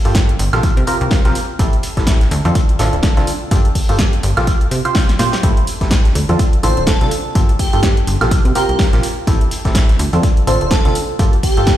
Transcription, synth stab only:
0.05 0.30 G2 medium
0.05 0.30 A#3 medium
0.05 0.30 F4 medium
0.05 0.30 G4 medium
0.05 0.30 A4 medium
0.53 0.62 C3 medium
0.53 0.62 A#3 medium
0.53 0.62 F4 medium
0.53 0.62 G4 medium
0.53 0.62 A4 medium
0.87 1.22 C3 medium
0.87 1.22 C4 medium
0.87 1.22 F4 medium
0.87 1.22 G4 medium
0.87 1.22 A#4 loud
1.25 1.40 C3 medium
1.25 1.40 C4 medium
1.25 1.40 F4 medium
1.25 1.40 G4 medium
1.25 1.40 A#4 medium
1.59 1.76 A2 medium
1.59 1.76 C4 medium
1.59 1.76 E4 medium
1.59 1.76 G4 medium
1.59 1.76 A4 medium
1.97 2.22 A2 medium
1.97 2.22 C4 medium
1.97 2.22 E4 medium
1.97 2.22 G4 medium
1.97 2.22 A4 medium
2.45 2.60 D3 medium
2.45 2.60 C4 medium
2.45 2.60 D4 medium
2.45 2.60 F4 medium
2.45 2.60 A4 loud
2.79 3.14 D3 medium
2.79 3.14 C4 medium
2.79 3.14 D4 medium
2.79 3.14 F4 medium
2.79 3.14 A4 loud
3.17 3.32 D3 medium
3.17 3.32 C4 medium
3.17 3.32 D4 medium
3.17 3.32 F4 medium
3.17 3.32 A4 medium
3.51 3.68 G2 medium
3.51 3.68 A#3 medium
3.51 3.68 F4 medium
3.51 3.68 G4 medium
3.51 3.68 A4 medium
3.89 4.14 G2 medium
3.89 4.14 A#3 medium
3.89 4.14 F4 medium
3.89 4.14 G4 medium
3.89 4.14 A4 medium
4.37 4.46 C3 medium
4.37 4.46 A#3 medium
4.37 4.46 F4 medium
4.37 4.46 G4 medium
4.37 4.46 A4 medium
4.85 5.10 C3 medium
4.85 5.10 C4 medium
4.85 5.10 F4 medium
4.85 5.10 G4 medium
4.85 5.10 C5 medium
5.19 5.36 A2 medium
5.19 5.36 C4 medium
5.19 5.36 F4 medium
5.19 5.36 G4 medium
5.19 5.36 C5 medium
5.43 5.60 A2 medium
5.43 5.60 C4 medium
5.43 5.60 E4 medium
5.43 5.60 G4 medium
5.43 5.60 A4 medium
5.81 6.06 A2 medium
5.81 6.06 C4 medium
5.81 6.06 E4 medium
5.81 6.06 G4 medium
5.81 6.06 A4 medium
6.29 6.44 D3 medium
6.29 6.44 C4 medium
6.29 6.44 D4 medium
6.29 6.44 F4 medium
6.29 6.44 A4 medium
6.63 6.98 D3 medium
6.63 6.98 C4 medium
6.63 6.98 D4 medium
6.63 6.98 F4 medium
6.63 6.98 A4 loud
7.01 7.16 D3 medium
7.01 7.16 C4 medium
7.01 7.16 D4 medium
7.01 7.16 F4 medium
7.01 7.16 A4 medium
7.35 7.52 G2 medium
7.35 7.52 A#3 medium
7.35 7.52 F4 medium
7.35 7.52 G4 medium
7.35 7.52 A4 medium
7.73 7.98 G2 medium
7.73 7.98 A#3 medium
7.73 7.98 F4 medium
7.73 7.98 G4 medium
7.73 7.98 A4 medium
8.21 8.30 C3 medium
8.21 8.30 A#3 medium
8.21 8.30 F4 medium
8.21 8.30 G4 medium
8.21 8.30 A4 medium
8.55 8.90 C3 medium
8.55 8.90 C4 medium
8.55 8.90 F4 medium
8.55 8.90 G4 medium
8.55 8.90 A#4 loud
8.93 9.08 C3 medium
8.93 9.08 C4 medium
8.93 9.08 F4 medium
8.93 9.08 G4 medium
8.93 9.08 A#4 medium
9.27 9.44 A2 medium
9.27 9.44 C4 medium
9.27 9.44 E4 medium
9.27 9.44 G4 medium
9.27 9.44 A4 medium
9.65 9.90 A2 medium
9.65 9.90 C4 medium
9.65 9.90 E4 medium
9.65 9.90 G4 medium
9.65 9.90 A4 medium
10.13 10.28 D3 medium
10.13 10.28 C4 medium
10.13 10.28 D4 medium
10.13 10.28 F4 medium
10.13 10.28 A4 medium
10.47 10.82 D3 medium
10.47 10.82 C4 medium
10.47 10.82 D4 medium
10.47 10.82 F4 medium
10.47 10.82 A4 loud
10.85 11.00 D3 medium
10.85 11.00 C4 medium
10.85 11.00 D4 medium
10.85 11.00 F4 medium
10.85 11.00 A4 medium
11.19 11.36 G2 medium
11.19 11.36 A#3 medium
11.19 11.36 F4 medium
11.19 11.36 G4 medium
11.19 11.36 A4 medium
11.57 11.77 G2 medium
11.57 11.77 A#3 medium
11.57 11.77 F4 medium
11.57 11.77 G4 medium
11.57 11.77 A4 medium

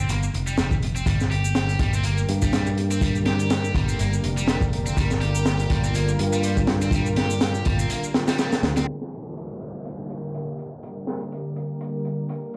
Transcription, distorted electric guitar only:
0.09 0.22 A#3 medium
0.47 0.57 G3 loud
0.58 0.71 G3 medium
0.96 1.06 C4 medium
1.07 1.20 G3 medium
1.31 1.79 G4 medium
1.80 1.92 G3 loud
1.94 2.04 C4 medium
2.04 2.17 A#3 medium
2.42 2.52 G3 loud
2.53 2.66 G3 loud
2.91 3.01 C4 medium
3.02 3.15 G3 medium
3.26 3.74 G4 medium
3.75 3.88 G3 medium
3.89 3.99 C4 medium
4.00 4.13 A#3 medium
4.38 4.47 G3 loud
4.48 4.61 G3 loud
4.86 4.97 C4 medium
4.97 5.10 G3 medium
5.21 5.69 G4 medium
5.71 5.83 G3 loud
5.84 5.94 C4 medium
5.95 6.08 A#3 medium
6.33 6.43 G3 loud
6.44 6.57 G3 loud
6.82 6.92 C4 medium
6.93 7.06 G3 medium
7.17 7.65 G4 medium
7.66 7.78 G3 loud
7.79 7.90 C4 medium
7.90 8.03 A#3 medium
8.28 8.38 G3 loud
8.39 8.52 G3 loud
8.77 8.87 C4 medium

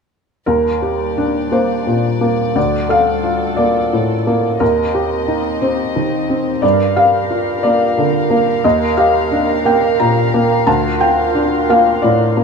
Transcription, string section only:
0.48 4.57 G3 soft
0.48 2.52 G4 soft
0.48 4.57 D5 soft
2.57 4.62 A4 soft
4.62 6.63 C4 soft
4.62 10.68 G4 soft
4.62 6.63 D#5 soft
6.62 12.44 A#4 soft
6.62 12.44 F5 soft
10.67 12.44 F4 soft

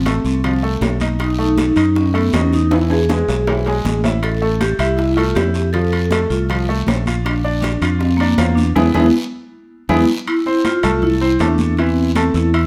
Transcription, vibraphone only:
0.00 0.21 C4 medium
0.26 0.61 C4 medium
1.22 1.30 D#4 medium
1.40 1.57 D#4 medium
1.96 2.05 C#4 medium
2.16 2.33 B3 medium
2.35 2.54 C#4 medium
2.54 2.73 D#4 medium
2.73 2.90 E4 medium
2.91 4.00 G#4 medium
4.23 4.62 A4 medium
4.61 5.00 G4 medium
4.97 5.17 E4 medium
5.16 5.36 F4 medium
5.36 5.75 G4 medium
5.73 6.32 A4 medium
6.30 6.66 F4 medium
7.25 7.60 D4 medium
7.61 7.97 D4 medium
7.99 8.20 C4 medium
8.17 8.57 A#3 medium
8.55 8.64 D4 medium
8.76 8.88 G#3 medium
8.76 8.88 B3 medium
8.76 8.88 E4 medium
8.94 9.07 G#3 medium
8.94 9.07 B3 medium
8.94 9.07 E4 medium
9.89 10.02 G#3 medium
9.89 10.02 B3 medium
9.89 10.02 E4 medium
10.28 10.67 E4 medium
10.66 11.04 F4 loud
11.03 11.42 E4 medium
11.41 11.76 D4 medium
11.79 12.37 C4 medium
12.35 12.67 E4 medium

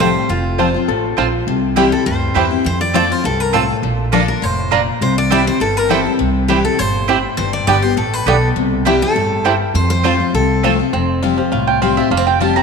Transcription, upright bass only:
0.00 0.15 C2 medium
0.29 0.75 F1 medium
0.88 1.13 A1 medium
1.18 1.43 A#1 medium
1.47 1.93 C2 medium
2.06 2.31 D2 medium
2.35 2.61 E2 medium
2.65 3.11 F2 medium
3.24 3.70 C2 medium
3.83 4.28 A#1 medium
4.42 4.88 F1 medium
5.01 5.47 C2 medium
5.60 6.06 G1 medium
6.20 6.66 C2 medium
6.80 7.25 G1 medium
7.38 7.61 G1 medium
7.67 7.93 G1 medium
7.97 8.22 A1 medium
8.26 8.51 B1 medium
8.56 9.02 C2 medium
9.15 9.61 G1 medium
9.74 10.20 F2 medium
10.33 10.79 C2 medium
10.93 11.39 F1 medium
11.52 11.98 C2 medium
12.11 12.57 F1 medium

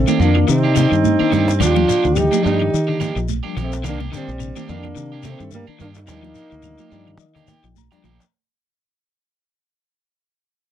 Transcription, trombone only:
0.00 0.21 C4 medium
0.22 0.47 D4 medium
0.49 1.56 D#4 loud
1.63 2.17 F4 loud
2.16 2.44 G4 loud
2.45 3.26 G4 medium
3.61 3.85 C4 medium
3.88 4.00 D4 medium
4.16 4.66 C4 medium
4.73 5.23 D4 loud
5.28 5.52 C4 medium
5.54 5.66 A#3 medium
5.83 5.89 D4 loud
5.97 7.73 D#4 loud

